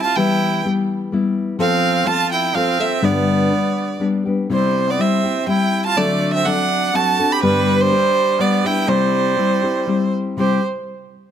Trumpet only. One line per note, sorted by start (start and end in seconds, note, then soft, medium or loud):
0.04 0.18 F4 medium
0.17 0.65 E4 medium
1.61 2.09 C4 medium
2.07 2.32 F4 loud
2.33 2.57 E4 medium
2.56 2.81 C4 medium
2.81 3.05 C4 medium
3.03 4.00 B3 medium
4.52 4.91 G3 medium
4.89 5.01 B3 medium
5.00 5.49 C4 medium
5.49 5.83 E4 medium
5.86 5.99 F4 medium
5.98 6.34 A3 medium
6.35 6.48 C4 medium
6.46 6.97 D4 medium
6.96 7.33 F#4 medium
7.31 7.42 G4 medium
7.43 7.80 G3 medium
7.80 8.41 G3 medium
8.40 8.67 B3 medium
8.66 8.90 E4 medium
8.89 10.14 G3 medium
10.38 10.62 G4 medium